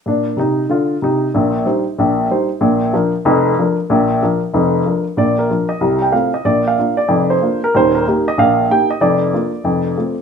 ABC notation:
X:1
M:4/4
L:1/8
Q:"Swing" 1/4=188
K:Bb
V:1 name="Upright piano"
z8 | z8 | z8 | z8 |
d B2 e2 g f e | d f2 d2 c2 B | c B2 e f2 g e | d6- d z |]
V:2 name="Upright piano" clef=bass
[B,,D]2 [C,E]2 [D,F]2 [C,E]2 | [B,,,B,,]2 [G,Ec]2 [B,,,B,,]2 [G,Ec]2 | [B,,,B,,]2 [F,DB]2 [F,,,F,,]2 [F,DB]2 | [B,,,B,,]2 [F,DB]2 [F,,,F,,]2 [F,DB]2 |
[B,,,B,,]2 [F,DF]2 [C,,C,]2 [A,CF]2 | [B,,,B,,]2 [B,DF]2 [F,,,F,,]2 [B,DF]2 | [E,,,E,,]2 [B,EG]2 [B,,,B,,]2 [B,EG]2 | [F,,,F,,]2 [B,DF]2 [F,,,F,,]2 [A,CF]2 |]